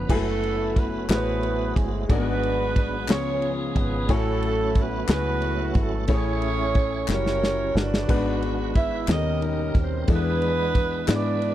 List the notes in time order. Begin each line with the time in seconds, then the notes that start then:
Already playing: D3 F3 B3 B4
0.08 F#1 F#3 G#3 A3 B3 E4 F#4 A4 B4 G#5, kick, crash
0.12 A3 C#4 F#4
0.43 ride
0.76 B3 B4, kick, ride
1.09 A1 A3 B3 E4 F#4 G#4 B4 C5, snare, clap, ride
1.17 C#5
1.43 ride
1.76 G1 G#3 G#4, kick, ride
2.09 G#1 G#2 F#3 G#3 A3 A#3 B3 D4 F#4 G#4 B4 D5, kick, ride
2.15 B3
2.43 ride
2.76 kick, ride
3.08 C#2 C#3 F3 G#3 B3 C#4 F4 G#4 C#5, snare, clap, ride
3.12 C#4 F4 G#4 C#5
3.42 ride
3.76 G#1 B3 B4, kick, ride
4.09 A1 A2 F#3 A3 C#4 E4 F#4 C#5 G#5, kick, ride
4.13 A3 C#4 E4 A4
4.43 ride
4.75 kick, ride
4.80 B3 B4
5.08 C#2 A3 E4 F#4 G#4 B4, snare, clap, ride
5.13 B3 E4 F#4 B4
5.42 ride
5.75 G#1, kick, ride
5.80 A3 A4
6.08 A1 A2 A3 C#4 E4 G#4 C5 C#5, kick, ride
6.13 C#4 E4 G#4 C#5
6.17 C#5
6.42 ride
6.75 kick, ride
7.08 F#1 C#3 G3 C#4 E4 F#4 A4 A#4, snare, clap
7.12 C#4 E4 A#4 C#5
7.26 snare
7.44 snare
7.75 G1 D4 F#4 B4 D5, snare
7.94 snare
8.08 G#1 G#2 G#3 B3 D4 F#4 A#4 B4, kick, crash
8.17 B4
8.42 ride
8.75 E4 E5, kick, ride
9.08 D#2 B2 D#3 F3 G3 B3 C#4 D#4 G4 A4 A#4 D#5, snare, clap, ride
9.16 G3 A#4
9.42 D#4 D#5, ride
9.75 D#2, kick, ride
9.80 C4 C5
10.08 E2 E3 G#3 B3 D4 E4 A4 B4, kick, ride
10.12 B3 D4 G#4 B4
10.42 ride
10.75 kick, ride
11.07 G#2 G#3 B3 D4 E4 D5, snare, clap, ride
11.13 D4 G#4 B4 D5
11.42 ride